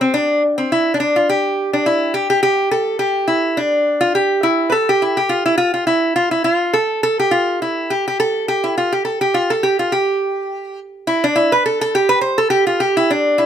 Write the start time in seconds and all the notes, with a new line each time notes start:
0.01 C4
0.14 D4
0.58 C4
0.72 E4
0.94 D4
1.00 D4
1.16 F4
1.29 G4
1.73 D4
1.86 E4
2.14 G4
2.30 G4
2.43 G4
2.71 A4
2.99 G4
3.28 E4
3.57 D4
4.01 F4
4.15 G4
4.43 E4
4.70 A4 B4
4.89 G4
5.02 E4
5.17 G4
5.29 F4
5.46 E4
5.58 F4
5.74 F4
5.87 E4
6.16 F4
6.31 E4
6.44 F4
6.74 A4
7.03 A4
7.20 G4
7.31 F4
7.62 E4
7.90 G4
8.08 G4
8.20 A4
8.48 G4
8.64 E4
8.78 F4
8.92 G4
9.05 A4
9.21 G4
9.34 F4
9.50 A4
9.63 G4
9.79 F4
9.92 G4
11.07 E4
11.24 D4
11.36 E4
11.52 B4
11.66 A4
11.81 A4
11.95 G4
12.09 B4
12.21 C5
12.38 A4
12.50 G4
12.67 F4
12.80 G4
12.97 E4
13.10 D4
13.38 E4